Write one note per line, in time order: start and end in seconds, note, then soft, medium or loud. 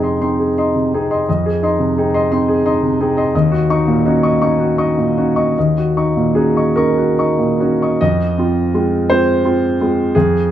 0.00 1.29 F2 soft
0.00 0.75 C3 soft
0.00 0.16 C4 soft
0.00 0.21 D#4 soft
0.00 0.39 G#4 soft
0.00 0.03 D#5 soft
0.00 0.18 D#5 soft
0.00 0.04 C6 soft
0.00 0.19 C6 soft
0.21 0.53 C4 soft
0.21 0.53 D#4 soft
0.21 0.49 C6 soft
0.39 0.67 G#4 soft
0.58 0.89 D#4 soft
0.58 0.73 D#5 soft
0.58 0.73 C6 soft
0.75 1.03 C3 soft
0.94 1.25 C4 soft
0.94 1.25 D#4 soft
0.94 1.21 G#4 soft
1.11 1.26 D#5 soft
1.11 1.26 C6 soft
1.29 1.62 F2 soft
1.29 1.56 D#5 soft
1.46 1.73 G#4 soft
1.63 1.93 D#4 soft
1.63 1.78 D#5 soft
1.63 1.78 C6 soft
1.79 2.06 C3 soft
1.98 2.28 C4 soft
1.98 2.28 D#4 soft
1.98 2.24 G#4 soft
2.14 2.29 D#5 soft
2.14 2.29 C6 soft
2.32 2.62 C4 soft
2.32 2.62 D#4 soft
2.32 2.58 C6 soft
2.48 2.75 G#4 soft
2.66 2.96 D#4 soft
2.66 2.81 D#5 soft
2.66 2.81 C6 soft
2.83 3.10 C3 soft
3.01 3.31 C4 soft
3.01 3.31 D#4 soft
3.01 3.28 G#4 soft
3.17 3.32 D#5 soft
3.17 3.33 C6 soft
3.35 3.68 D#2 medium
3.35 3.62 D#5 soft
3.52 3.79 F#4 medium
3.70 4.01 D#4 soft
3.70 3.85 D#5 soft
3.70 3.85 C#6 medium
3.88 4.16 A#2 medium
4.06 4.38 C#4 soft
4.06 4.38 D#4 soft
4.06 4.34 F#4 medium
4.23 4.39 D#5 soft
4.23 4.39 C#6 soft
4.42 4.75 C#4 soft
4.42 4.75 D#4 soft
4.42 4.71 C#6 soft
4.60 4.90 F#4 soft
4.78 5.12 D#4 soft
4.78 4.95 D#5 soft
4.78 4.95 C#6 soft
4.98 5.28 A#2 soft
5.18 5.53 C#4 soft
5.18 5.53 D#4 soft
5.18 5.48 F#4 soft
5.36 5.54 D#5 soft
5.36 5.54 C#6 soft
5.58 5.96 D#2 soft
5.58 5.89 D#5 soft
5.78 6.09 F#4 soft
5.97 6.32 D#4 soft
5.97 6.14 D#5 soft
5.97 6.14 C#6 soft
6.17 6.48 A#2 soft
6.35 6.72 C#4 soft
6.35 6.72 D#4 soft
6.35 6.68 F#4 soft
6.35 6.75 G#4 medium
6.56 6.74 D#5 soft
6.56 6.74 C#6 soft
6.76 7.13 C#4 soft
6.76 7.14 D#4 soft
6.76 8.00 A#4 medium
6.76 7.09 C#6 soft
6.98 7.30 F#4 soft
7.18 7.56 D#4 soft
7.18 7.37 D#5 soft
7.18 7.37 C#6 soft
7.39 7.72 A#2 soft
7.60 7.96 C#4 soft
7.60 7.96 D#4 soft
7.60 7.92 F#4 soft
7.82 7.99 D#5 soft
7.82 7.99 C#6 soft
8.01 8.37 F2 soft
8.01 9.09 D#5 medium
8.38 8.70 C4 soft
8.38 8.71 F4 soft
8.74 9.06 G#3 soft
8.74 9.06 C4 soft
8.74 9.06 F4 soft
9.10 9.41 G#3 soft
9.10 9.41 C4 soft
9.10 9.42 F4 soft
9.10 10.15 C5 medium
9.45 9.76 C4 soft
9.45 9.76 F4 soft
9.81 10.12 G#3 soft
9.81 10.12 C4 soft
9.81 10.12 F4 soft
10.15 10.49 F2 medium
10.15 10.51 G#4 medium